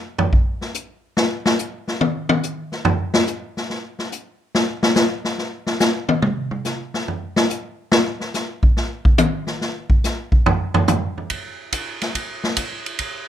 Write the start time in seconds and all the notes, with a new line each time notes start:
0.18 floor tom
0.33 kick
0.61 snare
0.74 hi-hat pedal
1.17 snare
1.46 snare
1.59 hi-hat pedal
1.88 snare
2.01 high tom
2.29 high tom
2.43 hi-hat pedal
2.72 snare
2.85 floor tom
3.14 snare
3.27 hi-hat pedal
3.57 snare
3.70 snare
3.99 snare
4.12 hi-hat pedal
4.55 snare
4.83 snare
4.96 snare, hi-hat pedal
5.25 snare
5.38 snare
5.67 snare
5.80 snare, hi-hat pedal
6.09 high tom
6.22 mid tom
6.51 mid tom
6.65 snare, hi-hat pedal
6.94 snare
7.08 floor tom
7.36 snare
7.50 hi-hat pedal
7.92 snare
8.20 snare
8.34 snare, hi-hat pedal
8.63 kick
8.77 snare
9.05 kick
9.18 hi-hat pedal, high tom
9.47 snare
9.61 snare
9.90 kick
10.04 snare, hi-hat pedal
10.32 kick
10.46 floor tom
10.74 floor tom
10.88 floor tom, hi-hat pedal
11.18 floor tom
11.30 kick, ride
11.72 kick, hi-hat pedal, ride
12.02 snare, ride
12.15 kick, ride
12.44 snare
12.57 kick, hi-hat pedal, ride
12.86 ride
12.99 kick, ride